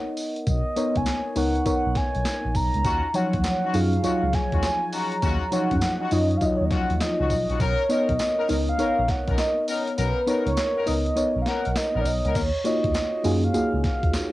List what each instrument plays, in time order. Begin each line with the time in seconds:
Already playing: fm electric piano B3 D#4 A#4 C#5 D#5, soft synth lead F#5
0.17 open hi-hat, tambourine
0.36 closed hi-hat
0.47 tine electric piano B1, soft synth lead D#5, kick, closed hi-hat, tambourine
0.76 fm electric piano B3 D#4 A#4 C#5, closed hi-hat, tambourine
0.96 tine electric piano C#2, soft synth lead G#5, kick, closed hi-hat
1.06 snare, clap, closed hi-hat, tambourine
1.36 tine electric piano C#2, fm electric piano B3 D#4 A#4 C#5, soft synth lead F#5, open hi-hat, tambourine
1.55 closed hi-hat
1.65 fm electric piano B3 D#4 A#4 C#5, soft synth lead F#5, kick, closed hi-hat, tambourine
1.85 tine electric piano B1
1.95 soft synth lead G#5, kick, snare, closed hi-hat
2.15 tine electric piano B1, closed hi-hat
2.25 snare, clap, closed hi-hat, tambourine
2.45 tine electric piano A#1
2.55 tine electric piano B1, soft synth lead A#5, kick, open hi-hat, tambourine
2.74 tine electric piano C#2, closed hi-hat
2.84 tine electric piano D#2, horn section C#4 D#4 F4 F#4, kick, closed hi-hat, tambourine
3.14 fm electric piano F3 F#3 D#4 C#5, horn section C#4 D#4 F4 F#4, soft synth lead F#5, closed hi-hat, tambourine
3.33 tine electric piano D#2, kick, closed hi-hat
3.44 snare, clap, closed hi-hat, tambourine
3.63 horn section C#4 D#4 F4 F#4
3.73 tine electric piano F#2, fm electric piano F#3 D#4 F4 G#4, soft synth lead F5, open hi-hat, tambourine
3.93 closed hi-hat
4.03 tine electric piano C#2, fm electric piano F#3 D#4 F4 C#5, horn section C#4 D#4 F4 F#4, closed hi-hat, tambourine
4.23 tine electric piano C#2
4.33 soft synth lead G#5, kick, snare, closed hi-hat
4.52 tine electric piano D#2, horn section C#4 D#4 F4 F#4, kick, closed hi-hat
4.63 soft synth lead G#5, snare, clap, closed hi-hat, tambourine
4.92 horn section C#4 D#4 F4 F#4, soft synth lead A#5, open hi-hat, tambourine
5.12 closed hi-hat
5.22 tine electric piano D#2, horn section C#4 D#4 F4 F#4, kick, closed hi-hat, tambourine
5.52 fm electric piano F3 F#3 D#4 C#5, horn section C#4 D#4 F4 F#4, soft synth lead F#5, closed hi-hat, tambourine
5.71 tine electric piano F#2, kick, closed hi-hat
5.81 snare, clap, closed hi-hat, tambourine
6.00 horn section C#4 D#4 F4 F#4
6.11 tine electric piano F#2, fm electric piano F#3 D#4 F4 C#5, soft synth lead D#5, open hi-hat, tambourine
6.31 closed hi-hat
6.37 tine electric piano D#2, fm electric piano F#3, soft synth lead F5, kick
6.41 fm electric piano D#4 F4 D#5, soft synth lead D#5, closed hi-hat, tambourine
6.57 tine electric piano D#2, soft synth lead C#5
6.65 soft synth lead D#5
6.71 horn section C#4 D#4 F4 F#4, soft synth lead F#5, kick, snare, closed hi-hat
6.90 tine electric piano D#2, closed hi-hat
7.01 soft synth lead D#5, snare, clap, closed hi-hat, tambourine
7.19 tine electric piano C#2, horn section C#4 D#4 F4 F#4
7.30 tine electric piano B1, soft synth lead D#5, kick, open hi-hat, tambourine
7.49 tine electric piano A#1, horn section C#4 D#4 F4 F#4, closed hi-hat
7.60 tine electric piano B1, horn section B3 C#4 D#4 A#4, soft synth lead C#5, kick, closed hi-hat, tambourine
7.89 fm electric piano B3 D#4 A#4 C#5, horn section B3 C#4 D#4 A#4, soft synth lead D#5, closed hi-hat, tambourine
8.09 tine electric piano B1, kick, closed hi-hat
8.19 snare, clap, closed hi-hat, tambourine
8.38 horn section B3 C#4 D#4 A#4
8.48 tine electric piano C#2, fm electric piano B3 D#4 A#4 D#5, open hi-hat, tambourine
8.68 soft synth lead F5, closed hi-hat
8.78 fm electric piano B3 D#4 A#4 C#5, horn section B3 C#4 D#4 A#4, closed hi-hat, tambourine
8.98 tine electric piano A#1
9.08 soft synth lead F#5, kick, snare, closed hi-hat
9.27 tine electric piano B1, horn section B3 C#4 D#4 A#4, kick, closed hi-hat
9.38 soft synth lead D#5, snare, clap, closed hi-hat, tambourine
9.68 horn section B3 C#4 D#4 A#4, soft synth lead D#5, open hi-hat, tambourine
9.87 closed hi-hat
9.97 tine electric piano B1, horn section B3 C#4 D#4 A#4, soft synth lead B4, closed hi-hat, tambourine
10.27 fm electric piano B3 D#4 A#4 C#5, horn section B3 C#4 D#4 A#4, closed hi-hat, tambourine
10.47 tine electric piano C#2, soft synth lead C#5, closed hi-hat
10.57 snare, clap, closed hi-hat, tambourine
10.76 horn section B3 C#4 D#4 A#4
10.86 tine electric piano C#2, fm electric piano B3 D#4 A#4 D#5, soft synth lead D#5, open hi-hat, tambourine
11.06 closed hi-hat
11.16 fm electric piano B3 D#4 A#4 C#5, closed hi-hat, tambourine
11.36 tine electric piano B1
11.42 horn section B3, soft synth lead F5
11.46 horn section C#4 D#4 A#4, soft synth lead F#5, snare, closed hi-hat
11.65 tine electric piano B1, closed hi-hat
11.76 soft synth lead D#5, snare, clap, closed hi-hat, tambourine
11.95 tine electric piano A#1, horn section B3 C#4 D#4 A#4
12.01 soft synth lead D5
12.06 tine electric piano B1, soft synth lead D#5, open hi-hat, tambourine
12.24 tine electric piano C#2, horn section B3 C#4 D#4 A#4, closed hi-hat
12.35 tine electric piano D#2, soft synth lead C#5, kick, closed hi-hat, crash, tambourine
12.64 fm electric piano A#3 D#4 F4 F#4 C#5, soft synth lead D#5, closed hi-hat, tambourine
12.84 tine electric piano D#2, kick, closed hi-hat
12.94 snare, clap, closed hi-hat, tambourine
13.24 tine electric piano F#2, fm electric piano A#3 D#4 F4 F#4 G#4, open hi-hat, tambourine
13.44 soft synth lead F5, closed hi-hat
13.54 tine electric piano C#2, fm electric piano A#3 D#4 F4 F#4 G#4, closed hi-hat, tambourine
13.73 tine electric piano C#2
13.84 soft synth lead F5, kick, snare, closed hi-hat
14.03 tine electric piano D#2, kick, closed hi-hat
14.13 snare, clap, closed hi-hat, tambourine